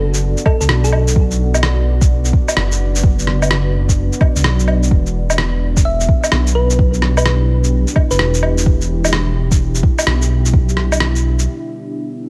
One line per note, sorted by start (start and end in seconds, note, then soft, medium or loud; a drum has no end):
0.00 0.36 F#1 loud
0.00 12.29 B3 medium
0.00 12.29 D4 medium
0.00 4.87 F#4 medium
0.00 1.12 A4 medium
0.00 8.62 D5 medium
0.14 shaker medium
0.37 shaker soft
0.46 0.56 A4 medium
0.46 kick loud
0.46 low woodblock soft
0.61 0.68 C#2 medium
0.61 0.66 A4 medium
0.61 shaker soft
0.69 1.15 B1 loud
0.69 cross-stick loud
0.84 1.31 A4 medium
0.84 shaker soft
0.92 low woodblock soft
1.08 shaker medium
1.16 2.32 B1 loud
1.16 4.87 B4 medium
1.16 kick loud
1.31 shaker soft
1.54 low woodblock medium
1.54 shaker medium
1.63 cross-stick loud
2.01 kick loud
2.01 shaker medium
2.25 shaker soft
2.33 kick loud
2.48 low woodblock medium
2.48 shaker soft
2.57 4.10 F#1 loud
2.57 cross-stick loud
2.72 shaker soft
2.95 shaker medium
3.04 kick loud
3.19 shaker soft
3.27 cross-stick medium
3.42 low woodblock medium
3.42 shaker medium
3.51 cross-stick loud
3.89 kick medium
3.89 shaker medium
4.13 shaker soft
4.21 kick loud
4.21 low woodblock soft
4.36 4.43 C#2 medium
4.36 shaker soft
4.44 4.90 B1 loud
4.44 cross-stick loud
4.59 shaker soft
4.68 low woodblock soft
4.83 shaker soft
4.91 6.07 E1 loud
4.91 12.29 E4 medium
4.91 12.29 G4 medium
4.91 kick loud
5.06 shaker soft
5.30 low woodblock medium
5.30 shaker medium
5.38 cross-stick loud
5.77 kick loud
5.77 shaker soft
5.85 6.10 E5 medium
6.00 shaker soft
6.09 kick loud
6.24 low woodblock medium
6.24 shaker soft
6.32 7.86 B1 medium
6.32 cross-stick loud
6.47 shaker soft
6.55 6.80 B4 medium
6.70 shaker soft
6.79 kick loud
6.94 shaker soft
7.02 cross-stick medium
7.17 7.82 B4 medium
7.17 low woodblock medium
7.17 shaker medium
7.26 cross-stick loud
7.64 shaker soft
7.87 shaker soft
7.96 kick loud
7.96 low woodblock soft
8.11 8.19 F#1 medium
8.11 8.43 B4 medium
8.11 shaker soft
8.19 8.65 E1 loud
8.19 cross-stick loud
8.34 shaker soft
8.43 low woodblock medium
8.58 shaker soft
8.66 9.82 E1 loud
8.66 12.29 E5 medium
8.66 kick loud
8.81 shaker soft
9.05 low woodblock medium
9.05 shaker medium
9.13 cross-stick loud
9.51 kick medium
9.51 shaker medium
9.75 shaker soft
9.83 kick loud
9.99 low woodblock medium
9.99 shaker medium
10.07 11.47 B1 loud
10.07 cross-stick loud
10.22 shaker soft
10.45 shaker soft
10.53 kick loud
10.69 shaker soft
10.77 cross-stick medium
10.92 low woodblock medium
10.92 shaker medium
11.00 cross-stick loud
11.16 shaker soft
11.39 shaker medium